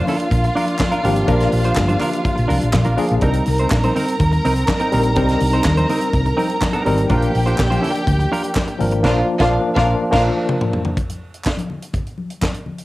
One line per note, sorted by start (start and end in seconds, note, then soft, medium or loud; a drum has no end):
0.00 1.04 F3 medium
0.00 1.04 A#3 medium
0.00 1.04 D4 medium
0.00 3.19 F4 medium
0.00 1.29 A#4 medium
0.00 3.19 F5 medium
0.07 0.27 D4 medium
0.07 0.19 F4 medium
0.07 0.18 A#4 loud
0.07 open hi-hat medium
0.07 low conga medium
0.20 muted clean electric guitar stroke soft
0.20 closed hi-hat medium
0.31 0.49 A#1 medium
0.31 muted clean electric guitar stroke soft
0.31 kick loud
0.31 closed hi-hat medium
0.31 muted conga soft
0.44 muted clean electric guitar stroke soft
0.44 closed hi-hat soft
0.55 0.74 D4 medium
0.55 0.67 F4 medium
0.55 0.66 A#4 medium
0.55 open hi-hat medium
0.55 high conga medium
0.67 muted clean electric guitar stroke medium
0.67 closed hi-hat soft
0.79 muted clean electric guitar stroke soft
0.79 kick loud
0.79 clap medium
0.79 muted conga soft
0.79 high conga medium
0.80 snare loud
0.80 clap medium
0.91 1.02 D4 medium
0.91 1.03 F4 medium
0.91 1.03 A#4 medium
0.91 closed hi-hat soft
0.91 muted conga soft
1.03 1.22 G#1 medium
1.03 1.19 F3 medium
1.03 1.19 A#3 medium
1.03 1.19 D4 medium
1.03 1.15 F4 medium
1.03 1.19 G4 medium
1.03 1.15 A#4 medium
1.03 open hi-hat medium
1.03 high conga soft
1.03 low conga medium
1.16 muted clean electric guitar stroke soft
1.16 closed hi-hat soft
1.27 1.46 A#1 loud
1.27 1.87 F3 medium
1.27 1.87 A#3 medium
1.27 1.50 D4 medium
1.27 1.87 D4 medium
1.27 1.51 F4 medium
1.27 1.51 A#4 medium
1.27 1.88 A#4 medium
1.27 kick loud
1.27 closed hi-hat medium
1.27 muted conga soft
1.40 snare soft
1.40 closed hi-hat soft
1.40 muted conga soft
1.52 1.70 A#1 medium
1.52 open hi-hat medium
1.64 1.75 D4 soft
1.64 1.76 F4 soft
1.64 1.77 C5 medium
1.64 closed hi-hat soft
1.76 1.95 G1 medium
1.76 muted clean electric guitar stroke soft
1.76 kick loud
1.76 snare loud
1.76 clap medium
1.88 1.99 D4 medium
1.88 1.99 F4 medium
1.88 2.01 C5 medium
1.88 closed hi-hat soft
1.88 high conga medium
2.00 2.20 D4 medium
2.00 2.12 F4 medium
2.00 2.11 A#4 loud
2.00 clap medium
2.00 open hi-hat medium
2.00 low conga medium
2.12 muted clean electric guitar stroke soft
2.12 closed hi-hat medium
2.24 muted clean electric guitar stroke soft
2.24 kick loud
2.24 closed hi-hat medium
2.36 2.47 A#1 medium
2.36 muted clean electric guitar stroke medium
2.36 closed hi-hat soft
2.48 2.59 C2 medium
2.48 2.68 D4 medium
2.48 2.60 F4 medium
2.48 2.59 A#4 medium
2.48 open hi-hat medium
2.48 high conga medium
2.60 2.71 A#1 medium
2.60 muted clean electric guitar stroke soft
2.60 closed hi-hat soft
2.73 2.83 A#2 medium
2.73 muted clean electric guitar stroke soft
2.73 kick loud
2.73 snare loud
2.73 clap medium
2.73 muted conga soft
2.73 high conga medium
2.84 2.95 A#1 medium
2.84 2.95 D4 medium
2.84 2.96 F4 medium
2.84 2.97 A#4 medium
2.84 closed hi-hat soft
2.84 muted conga soft
2.97 3.13 F3 medium
2.97 3.13 A#3 medium
2.97 3.12 D4 medium
2.97 3.13 D4 medium
2.97 3.09 F4 medium
2.97 3.13 G#4 loud
2.97 3.08 A#4 medium
2.97 open hi-hat medium
2.97 high conga soft
2.97 low conga medium
3.09 3.20 A#1 medium
3.09 muted clean electric guitar stroke soft
3.09 closed hi-hat soft
3.21 3.40 C2 loud
3.21 3.81 G3 medium
3.21 3.45 C4 medium
3.21 3.82 C4 medium
3.21 3.29 D4 medium
3.21 3.45 D#4 loud
3.21 7.06 A#4 medium
3.21 3.45 A#4 medium
3.21 3.82 A#4 medium
3.21 7.06 A#5 medium
3.21 kick loud
3.21 closed hi-hat medium
3.21 muted conga soft
3.29 3.85 D#4 medium
3.33 closed hi-hat medium
3.33 muted conga soft
3.46 3.65 C2 medium
3.46 muted clean electric guitar stroke soft
3.46 open hi-hat medium
3.58 3.71 C4 soft
3.58 3.72 D#4 medium
3.58 3.72 C5 medium
3.58 closed hi-hat soft
3.70 3.89 A#1 medium
3.70 muted clean electric guitar stroke soft
3.70 kick loud
3.70 snare loud
3.70 clap medium
3.70 muted conga soft
3.83 3.94 C4 medium
3.83 3.95 D#4 medium
3.83 3.96 C5 medium
3.83 closed hi-hat medium
3.83 muted conga soft
3.83 high conga medium
3.95 4.14 C4 medium
3.95 4.07 D#4 medium
3.95 4.06 A#4 medium
3.95 open hi-hat medium
3.95 low conga medium
4.08 muted clean electric guitar stroke soft
4.08 closed hi-hat medium
4.20 4.37 D#2 medium
4.20 muted clean electric guitar stroke soft
4.20 kick loud
4.20 closed hi-hat medium
4.32 muted clean electric guitar stroke soft
4.32 closed hi-hat soft
4.32 muted conga soft
4.44 4.62 C2 loud
4.44 4.63 C4 medium
4.44 4.55 D#4 medium
4.44 4.55 A#4 medium
4.44 open hi-hat medium
4.44 high conga medium
4.56 muted clean electric guitar stroke soft
4.56 closed hi-hat soft
4.68 muted clean electric guitar stroke soft
4.68 kick loud
4.68 snare loud
4.68 clap medium
4.68 high conga medium
4.79 4.91 C4 medium
4.79 4.92 D#4 medium
4.79 4.93 A#4 medium
4.79 closed hi-hat soft
4.92 5.17 A#1 loud
4.92 5.07 G3 medium
4.92 5.07 C4 medium
4.92 5.07 D#4 medium
4.92 5.04 D#4 medium
4.92 5.08 A#4 loud
4.92 5.03 A#4 medium
4.92 open hi-hat medium
4.92 high conga soft
4.92 low conga medium
5.03 muted clean electric guitar stroke soft
5.03 closed hi-hat soft
5.15 5.34 C2 loud
5.15 5.75 G3 medium
5.15 5.75 C4 medium
5.15 5.39 C4 medium
5.15 5.23 D4 medium
5.15 5.39 D#4 medium
5.15 5.39 A#4 medium
5.15 5.76 A#4 medium
5.15 kick loud
5.15 closed hi-hat medium
5.15 muted conga soft
5.23 5.79 D#4 medium
5.28 snare soft
5.28 closed hi-hat soft
5.40 5.59 C2 medium
5.40 muted clean electric guitar stroke soft
5.40 open hi-hat medium
5.52 5.65 C4 medium
5.52 5.65 D#4 medium
5.52 5.66 C5 medium
5.52 closed hi-hat soft
5.64 5.83 D#2 medium
5.64 kick loud
5.64 snare loud
5.64 clap loud
5.64 muted conga soft
5.77 5.88 C4 medium
5.77 5.88 D#4 medium
5.77 5.90 C5 medium
5.77 closed hi-hat soft
5.77 muted conga soft
5.77 high conga medium
5.89 6.08 C4 medium
5.89 6.02 D#4 medium
5.89 6.01 A#4 medium
5.89 open hi-hat medium
5.89 low conga medium
6.01 muted clean electric guitar stroke soft
6.01 closed hi-hat medium
6.13 6.31 C2 medium
6.13 muted clean electric guitar stroke soft
6.13 kick loud
6.13 closed hi-hat medium
6.13 muted conga soft
6.25 muted clean electric guitar stroke soft
6.25 closed hi-hat soft
6.25 muted conga soft
6.37 6.56 C4 medium
6.37 6.49 D#4 medium
6.37 6.48 A#4 medium
6.37 open hi-hat medium
6.37 high conga medium
6.49 muted clean electric guitar stroke soft
6.49 closed hi-hat soft
6.61 muted clean electric guitar stroke soft
6.61 kick loud
6.61 snare medium
6.61 clap medium
6.61 muted conga soft
6.61 high conga medium
6.73 6.84 C4 medium
6.73 6.85 D#4 medium
6.73 6.86 A#4 medium
6.73 closed hi-hat soft
6.73 muted conga soft
6.85 7.04 G#1 loud
6.85 7.00 G3 medium
6.85 7.01 C4 medium
6.85 7.01 D#4 medium
6.85 6.98 D#4 medium
6.85 7.01 A#4 medium
6.85 6.97 A#4 medium
6.85 open hi-hat medium
6.85 high conga medium
6.85 low conga medium
6.97 muted clean electric guitar stroke soft
6.97 closed hi-hat soft
7.09 7.28 A#1 loud
7.09 7.69 F3 medium
7.09 7.69 A#3 medium
7.09 7.32 D4 medium
7.09 7.69 D4 medium
7.09 7.33 F4 medium
7.09 9.00 G4 medium
7.09 7.33 A#4 medium
7.09 7.70 A#4 medium
7.09 9.00 G5 medium
7.09 kick loud
7.09 closed hi-hat medium
7.22 closed hi-hat soft
7.22 muted conga soft
7.34 7.52 A#1 loud
7.34 muted clean electric guitar stroke soft
7.34 open hi-hat medium
7.46 7.57 D4 medium
7.46 7.57 F4 medium
7.46 7.59 C5 medium
7.46 closed hi-hat soft
7.58 7.77 A#1 medium
7.58 muted clean electric guitar stroke soft
7.58 kick loud
7.58 clap medium
7.60 snare loud
7.60 clap medium
7.70 7.80 D4 medium
7.70 7.81 F4 medium
7.70 7.82 C5 medium
7.70 closed hi-hat soft
7.70 muted conga soft
7.70 high conga medium
7.81 8.02 D4 medium
7.81 7.94 F4 medium
7.81 7.93 A#4 medium
7.81 open hi-hat medium
7.81 low conga medium
7.95 muted clean electric guitar stroke soft
7.95 closed hi-hat medium
8.07 8.25 D2 medium
8.07 muted clean electric guitar stroke soft
8.07 kick loud
8.07 closed hi-hat medium
8.19 muted clean electric guitar stroke soft
8.19 closed hi-hat soft
8.19 muted conga soft
8.32 8.50 D4 medium
8.32 8.45 F4 medium
8.32 8.43 A#4 medium
8.32 open hi-hat medium
8.32 high conga medium
8.44 muted clean electric guitar stroke medium
8.44 closed hi-hat soft
8.55 muted clean electric guitar stroke soft
8.55 kick loud
8.55 clap loud
8.57 snare loud
8.57 clap medium
8.57 muted conga soft
8.57 high conga medium
8.67 muted clean electric guitar stroke medium
8.67 closed hi-hat soft
8.79 9.04 G#1 medium
8.79 8.94 F3 medium
8.79 8.94 A#3 medium
8.79 8.94 D4 medium
8.79 8.95 A#4 loud
8.79 open hi-hat medium
8.79 high conga soft
8.79 low conga medium
8.91 muted clean electric guitar stroke medium
8.91 closed hi-hat soft
9.03 9.21 A#1 loud
9.03 9.20 F3 loud
9.03 9.20 A#3 loud
9.03 9.20 D4 loud
9.03 9.21 D4 medium
9.03 9.20 F4 loud
9.03 9.21 F4 loud
9.03 9.21 A#4 medium
9.03 9.20 F5 medium
9.03 kick loud
9.03 snare loud
9.03 crash medium
9.39 9.57 A#1 loud
9.39 9.56 F3 loud
9.39 9.56 A#3 medium
9.39 9.57 D4 loud
9.39 9.57 D4 medium
9.39 9.56 F4 loud
9.39 9.57 F4 medium
9.39 9.57 F4 loud
9.39 9.56 F5 loud
9.39 kick loud
9.39 snare loud
9.75 9.93 A#1 loud
9.75 9.92 F3 medium
9.75 9.93 A#3 loud
9.75 9.93 D4 loud
9.75 9.92 F4 loud
9.75 9.93 F4 loud
9.75 9.94 A#4 loud
9.75 9.92 F5 loud
9.75 kick loud
9.75 snare loud
10.11 10.29 A#1 medium
10.11 10.28 F3 medium
10.11 10.28 A#3 loud
10.11 10.28 D4 medium
10.11 10.29 D4 loud
10.11 10.29 F4 loud
10.11 10.29 A#4 loud
10.11 10.29 F5 loud
10.11 kick loud
10.11 snare loud
10.11 crash medium
10.49 mid tom medium
10.61 mid tom medium
10.73 floor tom medium
10.85 floor tom medium
10.97 kick loud
10.97 closed hi-hat medium
11.10 closed hi-hat soft
11.10 muted conga soft
11.34 closed hi-hat soft
11.44 kick loud
11.44 clap medium
11.44 muted conga soft
11.47 snare loud
11.47 clap medium
11.57 closed hi-hat soft
11.57 muted conga soft
11.57 high conga medium
11.70 low conga medium
11.82 closed hi-hat medium
11.93 kick medium
11.93 closed hi-hat medium
11.93 muted conga soft
11.93 low conga medium
12.07 closed hi-hat soft
12.18 high conga medium
12.30 closed hi-hat soft
12.41 kick medium
12.41 snare medium
12.41 clap medium
12.41 muted conga soft
12.41 high conga medium
12.54 closed hi-hat soft
12.54 muted conga soft
12.66 high conga soft
12.66 low conga medium
12.78 closed hi-hat soft